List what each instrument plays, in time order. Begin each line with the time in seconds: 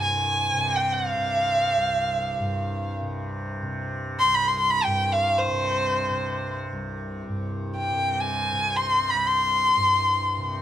Already playing: tanpura C2 G2 C3
0.02 violin G#5
0.53 tanpura C3
0.76 violin G5
0.93 violin F5
1.14 tanpura C3
1.77 tanpura C2
2.40 tanpura G2
3.01 tanpura C3
3.62 tanpura C3
4.19 violin C6
4.24 tanpura C2
4.35 violin B5
4.48 violin C6
4.59 violin C6
4.70 violin B5
4.84 tanpura G2, violin G5
5.12 violin F5
5.38 violin C5
5.48 tanpura C3
6.10 tanpura C3
6.73 tanpura C2
7.28 tanpura G2
7.77 violin G5
7.91 tanpura C3
8.20 violin G#5
8.53 tanpura C3
8.76 violin C6
9.10 tanpura C2, violin B5
9.27 violin C6
9.76 tanpura G2
10.38 tanpura C3